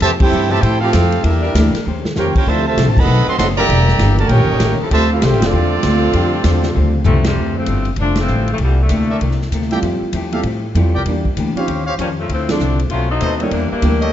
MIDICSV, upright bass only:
0, 0, Header, 1, 3, 480
1, 0, Start_track
1, 0, Key_signature, -1, "minor"
1, 0, Tempo, 307062
1, 19, Time_signature, 4, 2, 24, 8
1, 22083, End_track
2, 0, Start_track
2, 0, Title_t, "Upright bass"
2, 0, Program_c, 0, 32
2, 13, Note_on_c, 0, 41, 99
2, 481, Note_off_c, 0, 41, 0
2, 494, Note_on_c, 0, 43, 99
2, 961, Note_off_c, 0, 43, 0
2, 974, Note_on_c, 0, 45, 91
2, 1441, Note_off_c, 0, 45, 0
2, 1460, Note_on_c, 0, 41, 101
2, 1924, Note_off_c, 0, 41, 0
2, 1935, Note_on_c, 0, 40, 88
2, 2400, Note_off_c, 0, 40, 0
2, 2412, Note_on_c, 0, 38, 98
2, 2695, Note_off_c, 0, 38, 0
2, 2909, Note_on_c, 0, 39, 89
2, 3367, Note_off_c, 0, 39, 0
2, 3386, Note_on_c, 0, 41, 94
2, 3662, Note_off_c, 0, 41, 0
2, 3852, Note_on_c, 0, 38, 90
2, 4317, Note_off_c, 0, 38, 0
2, 4336, Note_on_c, 0, 36, 107
2, 4484, Note_off_c, 0, 36, 0
2, 4484, Note_on_c, 0, 33, 64
2, 4636, Note_off_c, 0, 33, 0
2, 4646, Note_on_c, 0, 29, 74
2, 4797, Note_off_c, 0, 29, 0
2, 4812, Note_on_c, 0, 35, 97
2, 5093, Note_off_c, 0, 35, 0
2, 5292, Note_on_c, 0, 30, 94
2, 5756, Note_off_c, 0, 30, 0
2, 5767, Note_on_c, 0, 28, 91
2, 6220, Note_off_c, 0, 28, 0
2, 6229, Note_on_c, 0, 31, 101
2, 6703, Note_off_c, 0, 31, 0
2, 6709, Note_on_c, 0, 34, 92
2, 6885, Note_off_c, 0, 34, 0
2, 6885, Note_on_c, 0, 31, 59
2, 7045, Note_off_c, 0, 31, 0
2, 7057, Note_on_c, 0, 27, 72
2, 7182, Note_off_c, 0, 27, 0
2, 7191, Note_on_c, 0, 33, 91
2, 7479, Note_off_c, 0, 33, 0
2, 7671, Note_on_c, 0, 38, 94
2, 8142, Note_off_c, 0, 38, 0
2, 8154, Note_on_c, 0, 36, 103
2, 8316, Note_off_c, 0, 36, 0
2, 8316, Note_on_c, 0, 33, 66
2, 8461, Note_off_c, 0, 33, 0
2, 8471, Note_on_c, 0, 29, 73
2, 8624, Note_off_c, 0, 29, 0
2, 8643, Note_on_c, 0, 40, 91
2, 9107, Note_off_c, 0, 40, 0
2, 9113, Note_on_c, 0, 38, 100
2, 9581, Note_off_c, 0, 38, 0
2, 9593, Note_on_c, 0, 41, 95
2, 10061, Note_off_c, 0, 41, 0
2, 10068, Note_on_c, 0, 40, 97
2, 10538, Note_off_c, 0, 40, 0
2, 10570, Note_on_c, 0, 38, 93
2, 11025, Note_off_c, 0, 38, 0
2, 11034, Note_on_c, 0, 36, 89
2, 11497, Note_off_c, 0, 36, 0
2, 11506, Note_on_c, 0, 38, 77
2, 11971, Note_off_c, 0, 38, 0
2, 11981, Note_on_c, 0, 31, 84
2, 12454, Note_off_c, 0, 31, 0
2, 12463, Note_on_c, 0, 29, 77
2, 12935, Note_off_c, 0, 29, 0
2, 12955, Note_on_c, 0, 33, 88
2, 13412, Note_off_c, 0, 33, 0
2, 13421, Note_on_c, 0, 36, 91
2, 13895, Note_off_c, 0, 36, 0
2, 13907, Note_on_c, 0, 38, 93
2, 14379, Note_off_c, 0, 38, 0
2, 14392, Note_on_c, 0, 36, 87
2, 14857, Note_off_c, 0, 36, 0
2, 14866, Note_on_c, 0, 38, 84
2, 15339, Note_off_c, 0, 38, 0
2, 15350, Note_on_c, 0, 41, 88
2, 15632, Note_off_c, 0, 41, 0
2, 15828, Note_on_c, 0, 40, 96
2, 16301, Note_off_c, 0, 40, 0
2, 16310, Note_on_c, 0, 45, 79
2, 16782, Note_off_c, 0, 45, 0
2, 16797, Note_on_c, 0, 41, 92
2, 16942, Note_off_c, 0, 41, 0
2, 16942, Note_on_c, 0, 40, 61
2, 17108, Note_off_c, 0, 40, 0
2, 17118, Note_on_c, 0, 36, 67
2, 17266, Note_off_c, 0, 36, 0
2, 17275, Note_on_c, 0, 40, 83
2, 17746, Note_off_c, 0, 40, 0
2, 17772, Note_on_c, 0, 38, 89
2, 18048, Note_off_c, 0, 38, 0
2, 18248, Note_on_c, 0, 39, 77
2, 18714, Note_off_c, 0, 39, 0
2, 18730, Note_on_c, 0, 41, 91
2, 19195, Note_off_c, 0, 41, 0
2, 19218, Note_on_c, 0, 38, 78
2, 19680, Note_off_c, 0, 38, 0
2, 19696, Note_on_c, 0, 36, 89
2, 20149, Note_off_c, 0, 36, 0
2, 20159, Note_on_c, 0, 35, 76
2, 20631, Note_off_c, 0, 35, 0
2, 20646, Note_on_c, 0, 39, 88
2, 21112, Note_off_c, 0, 39, 0
2, 21122, Note_on_c, 0, 40, 88
2, 21410, Note_off_c, 0, 40, 0
2, 21602, Note_on_c, 0, 38, 89
2, 22075, Note_off_c, 0, 38, 0
2, 22083, End_track
3, 0, Start_track
3, 0, Title_t, "Muted upright bass strokes"
3, 2732, Note_on_c, 9, 29, 44
3, 2888, Note_off_c, 9, 29, 0
3, 3676, Note_on_c, 9, 29, 41
3, 3832, Note_off_c, 9, 29, 0
3, 5110, Note_on_c, 9, 29, 40
3, 5266, Note_off_c, 9, 29, 0
3, 7504, Note_on_c, 9, 29, 41
3, 7661, Note_off_c, 9, 29, 0
3, 15642, Note_on_c, 9, 29, 44
3, 15798, Note_off_c, 9, 29, 0
3, 18057, Note_on_c, 9, 29, 42
3, 18214, Note_off_c, 9, 29, 0
3, 21444, Note_on_c, 9, 29, 44
3, 21601, Note_off_c, 9, 29, 0
3, 22083, End_track
0, 0, End_of_file